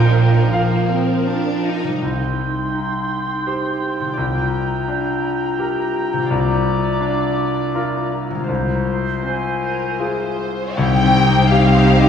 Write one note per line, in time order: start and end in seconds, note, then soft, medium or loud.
0.00 0.40 A#1 soft
0.00 0.40 A#2 medium
0.00 1.78 F3 medium
0.00 0.15 D#4 soft
0.00 1.78 A#4 medium
0.00 1.98 A#4 soft
0.00 0.51 F5 soft
0.00 0.49 G5 medium
0.14 0.33 A#3 soft
0.33 0.52 D#4 soft
0.52 0.87 A#3 medium
0.52 1.61 F5 medium
0.90 1.28 C4 medium
1.27 1.65 D4 medium
1.66 2.02 D#4 medium
1.83 3.99 C3 soft
1.88 5.78 G3 soft
1.92 4.16 D#4 soft
1.97 4.18 D#5 soft
2.02 4.14 C2 soft
2.02 4.15 D#4 soft
2.02 6.28 G5 soft
2.02 4.20 C6 soft
2.74 3.90 D#4 soft
3.47 4.14 G4 soft
3.47 4.14 C5 soft
4.00 6.12 C3 soft
4.04 6.16 A#3 soft
4.09 6.21 F4 soft
4.13 6.27 C2 soft
4.13 6.25 D5 soft
4.18 8.16 F4 soft
4.18 8.95 A#5 soft
4.88 6.03 D4 soft
5.59 6.27 G4 soft
5.59 6.27 A#4 soft
6.13 8.29 C3 soft
6.18 8.45 A#3 soft
6.22 8.38 F4 soft
6.26 8.49 D5 soft
6.30 8.44 C2 soft
6.30 8.16 D5 medium
7.01 8.18 D4 soft
7.75 8.45 F4 soft
7.75 8.45 A#4 soft
8.31 10.72 C3 soft
8.35 10.74 G#3 soft
8.40 10.76 F4 soft
8.44 11.75 C5 soft
8.48 10.74 C2 soft
8.48 10.40 F4 soft
8.48 10.39 C5 soft
9.22 10.47 C4 soft
9.22 10.39 G#5 soft
9.62 9.97 A#4 soft
9.99 10.74 F4 soft
9.99 10.74 G#4 soft
9.99 10.78 C5 medium
10.77 12.09 C2 medium
10.77 12.09 C2 soft
10.77 12.09 C3 medium
10.77 12.09 C3 soft
10.77 12.09 G3 medium
10.77 12.09 D#4 medium
10.77 12.09 G4 medium
10.77 12.09 C5 medium
10.77 11.52 G5 medium
11.03 11.42 C4 soft
11.03 12.09 C4 soft
11.26 12.09 G3 soft
11.26 11.65 D#4 soft
11.51 12.09 D#4 soft
11.51 11.90 G4 soft
11.51 12.09 F5 medium
11.75 12.09 C5 soft
11.99 12.09 G4 soft
11.99 12.09 D#5 soft